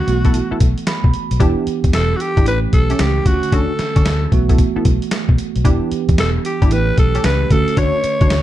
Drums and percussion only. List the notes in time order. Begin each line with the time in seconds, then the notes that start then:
0.08 closed hi-hat
0.25 kick, closed hi-hat
0.34 closed hi-hat
0.60 kick, closed hi-hat
0.78 closed hi-hat
0.87 snare, closed hi-hat
1.04 kick
1.14 closed hi-hat
1.31 closed hi-hat
1.40 kick, closed hi-hat
1.67 closed hi-hat
1.84 kick, closed hi-hat
1.93 snare, closed hi-hat
2.20 closed hi-hat
2.37 kick, closed hi-hat
2.46 closed hi-hat
2.73 kick, closed hi-hat
2.90 closed hi-hat
2.99 snare, closed hi-hat
3.26 kick, closed hi-hat
3.43 closed hi-hat
3.52 kick, closed hi-hat
3.79 snare, closed hi-hat
3.96 kick, closed hi-hat
4.06 snare, closed hi-hat
4.32 kick, closed hi-hat
4.49 kick, closed hi-hat
4.58 kick, closed hi-hat
4.85 kick, closed hi-hat
5.02 closed hi-hat
5.11 snare, closed hi-hat
5.29 kick
5.38 closed hi-hat
5.56 closed hi-hat
5.65 kick, closed hi-hat
5.92 closed hi-hat
6.09 kick, closed hi-hat
6.18 snare, closed hi-hat
6.45 closed hi-hat
6.62 kick, closed hi-hat
6.71 closed hi-hat
6.98 kick, closed hi-hat
7.15 closed hi-hat
7.24 snare, closed hi-hat
7.50 kick, closed hi-hat
7.68 closed hi-hat
7.77 kick, closed hi-hat
8.04 closed hi-hat
8.21 kick, closed hi-hat
8.30 snare, closed hi-hat